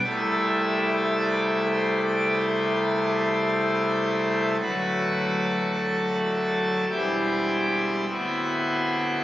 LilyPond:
<<
  \new Staff \with { instrumentName = "Pipe organ" } { \time 4/4 \key a \dorian \tempo 4 = 52 e''4 d''16 e''16 c''16 d''16 c''2 | b'4 a'4 g'4 fis'4 | }
  \new Staff \with { instrumentName = "Pipe organ" } { \clef bass \time 4/4 \key a \dorian <c, c g a e'>1 | <d,, d, fis a fis'>2 <e,, e, g c' e'>4 <d,, d, b c' e'>4 | }
>>